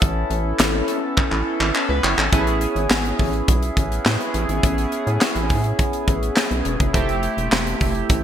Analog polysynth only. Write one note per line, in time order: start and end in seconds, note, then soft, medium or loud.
0.00 2.28 B3 medium
0.00 1.71 C#4 medium
0.00 1.71 E4 medium
0.00 1.71 A4 medium
1.75 1.89 C#4 medium
1.75 1.89 A4 medium
1.89 2.03 B4 medium
2.04 2.18 E4 medium
2.04 2.17 C#5 medium
2.18 2.31 C#4 medium
2.18 2.45 A4 medium
2.32 6.90 B3 medium
2.32 6.90 C#4 medium
2.32 6.90 E4 medium
2.32 6.90 G#4 medium
6.93 8.24 A3 medium
6.93 8.24 C4 medium
6.93 8.24 E4 medium
6.93 8.24 G4 medium